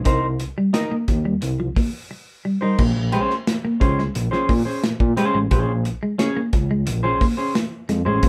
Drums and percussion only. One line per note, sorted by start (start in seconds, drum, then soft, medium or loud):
0.05 kick loud
0.05 closed hi-hat loud
0.40 closed hi-hat medium
0.74 snare loud
0.74 closed hi-hat loud
1.08 kick medium
1.08 snare soft
1.08 closed hi-hat medium
1.42 closed hi-hat medium
1.76 kick loud
1.76 snare soft
1.76 open hi-hat medium
2.78 kick loud
2.78 crash loud
3.12 closed hi-hat medium
3.30 snare soft
3.47 snare loud
3.47 closed hi-hat loud
3.81 kick loud
3.81 closed hi-hat medium
3.99 snare soft
4.15 closed hi-hat loud
4.33 snare soft
4.49 kick loud
4.49 open hi-hat medium
4.84 snare loud
4.84 closed hi-hat medium
5.00 kick medium
5.17 snare soft
5.17 closed hi-hat medium
5.51 kick loud
5.51 closed hi-hat medium
5.85 closed hi-hat medium
6.19 snare loud
6.19 closed hi-hat loud
6.53 kick medium
6.53 snare soft
6.53 closed hi-hat medium
6.87 closed hi-hat loud
7.21 kick loud
7.21 open hi-hat medium
7.55 snare loud
7.55 closed hi-hat medium
7.89 snare soft
7.89 closed hi-hat medium
8.23 kick loud
8.23 closed hi-hat medium